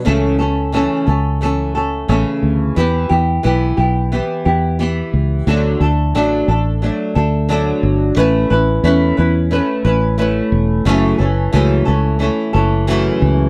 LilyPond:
<<
  \new Staff \with { instrumentName = "Nylon-string guitar" } { \time 4/4 \key e \dorian \tempo 4 = 89 <cis e a cis' a'>8 <a cis' a'>8 <cis e a cis' a'>8 <a cis' a'>8 <e a cis' a'>8 <a cis' a'>8 <cis e a cis' a'>4 | <e b e' g'>8 <b e' g'>8 <e b e' g'>8 <b e' g'>8 <e b e' g'>8 <b e' g'>8 <e b e' g'>4 | <d fis a d' a'>8 <a d' a'>8 <d fis a d' a'>8 <a d' a'>8 <fis a d' a'>8 <a d' a'>8 <d fis a d' a'>4 | <a cis' e' b'>8 <cis' e' b'>8 <a cis' e' b'>8 <cis' e' b'>8 <a cis' e' b'>8 <cis' e' b'>8 <a cis' e' b'>4 |
<fis, cis e a cis' a'>8 <e a cis' a'>8 <fis, cis e a cis' a'>8 <e a cis' a'>8 <e a cis' a'>8 <e a cis' a'>8 <fis, cis e a cis' a'>4 | }
  \new Staff \with { instrumentName = "Fingered electric bass" } { \clef bass \time 4/4 \key e \dorian cis,4~ cis,16 r16 cis,4. a,,16 r16 d,8 | e,8 e,8 b,,8 b,,8. r16 e,4 cis,8 | d,8 d,8 a,,8 a,,8. r16 d,4 g,,8 | a,,8 a,,8 e,8 e,8. r16 a,,4 e,,8 |
fis,,8 fis,,8 cis,8 cis,8. r16 fis,,4 cis,8 | }
>>